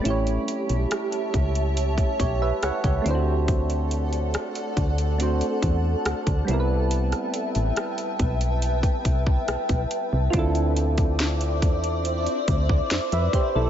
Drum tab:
HH |xxxxxxxxxxx-xxx-|xxxxxxxxxxx-xxx-|xxxxxxxxxxx-xxx-|xxxxxxxxxxx-xxx-|
SD |----r-------r---|----r-------r---|-r--r-------r---|----o-------o---|
BD |------o--oo--o--|o-----o---o--o--|------o--ooo-o--|o--o--o---oo--o-|